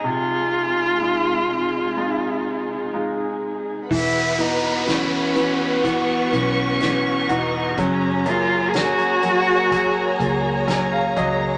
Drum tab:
CC |----------------|x---------------|----------------|
HH |----------------|--x-x-x-x-x-x-x-|x-x-xxx-x-x-x-x-|
SD |----------------|---oo-------o---|----o-------o---|
BD |----------------|o-------o-------|o-------o-o---o-|